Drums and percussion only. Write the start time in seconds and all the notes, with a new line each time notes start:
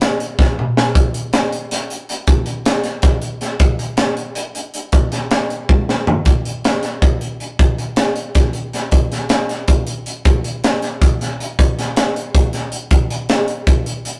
0.01 snare, closed hi-hat
0.20 closed hi-hat
0.39 kick, snare
0.59 mid tom
0.77 snare
0.95 kick, closed hi-hat
1.14 closed hi-hat
1.33 snare, closed hi-hat
1.52 closed hi-hat
1.71 snare, closed hi-hat
1.90 closed hi-hat
2.09 closed hi-hat
2.27 kick, closed hi-hat
2.46 closed hi-hat
2.66 snare, closed hi-hat
2.84 snare, closed hi-hat
3.02 kick, snare, closed hi-hat
3.22 closed hi-hat
3.41 snare, closed hi-hat
3.60 kick, closed hi-hat
3.79 closed hi-hat
3.97 snare, closed hi-hat
4.17 closed hi-hat
4.35 closed hi-hat
4.55 closed hi-hat
4.74 closed hi-hat
4.92 kick, closed hi-hat
5.12 snare, closed hi-hat
5.31 snare, closed hi-hat
5.50 closed hi-hat
5.69 kick, high tom
5.89 snare
6.07 floor tom
6.25 kick, closed hi-hat
6.45 closed hi-hat
6.64 snare, closed hi-hat
6.83 snare, closed hi-hat
7.02 kick, closed hi-hat
7.21 closed hi-hat
7.40 closed hi-hat
7.59 kick, closed hi-hat
7.78 closed hi-hat
7.96 snare, closed hi-hat
8.16 closed hi-hat
8.35 kick, snare, closed hi-hat
8.53 closed hi-hat
8.73 snare, closed hi-hat
8.91 kick, closed hi-hat
9.12 snare, closed hi-hat
9.29 snare, closed hi-hat
9.49 snare, closed hi-hat
9.68 kick, closed hi-hat
9.87 closed hi-hat
10.06 closed hi-hat
10.25 kick, closed hi-hat
10.44 closed hi-hat
10.64 snare, closed hi-hat
10.82 snare, closed hi-hat
11.02 kick, closed hi-hat
11.21 snare, closed hi-hat
11.40 closed hi-hat
11.59 kick, closed hi-hat
11.79 snare, closed hi-hat
11.96 snare, closed hi-hat
12.16 closed hi-hat
12.35 kick, closed hi-hat
12.53 snare, closed hi-hat
12.72 closed hi-hat
12.91 kick, closed hi-hat
13.10 closed hi-hat
13.29 snare, closed hi-hat
13.48 closed hi-hat
13.67 kick, closed hi-hat
13.86 closed hi-hat
14.05 closed hi-hat